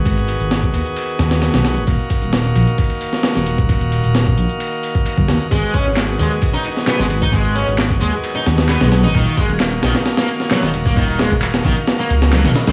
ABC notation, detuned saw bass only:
X:1
M:4/4
L:1/16
Q:1/4=132
K:Ebm
V:1 name="Detuned saw bass" clef=bass
A,,,3 A,,,3 E,, z3 E,,3 C,,2 A,,, | E,,, z2 E,,,3 B,,, z6 E,,,3- | E,,,3 E,,,3 B,,, z6 G,,, E,, z | A,,, z2 A,,,3 E,, z6 A,,,3- |
A,,,3 A,,,3 E,, z3 E,,3 C,,2 A,,, | E,,, z2 E,,,3 B,,, z6 E,,,3- | E,,,3 E,,,3 B,,, z3 D,,3 E,,, z D,, |]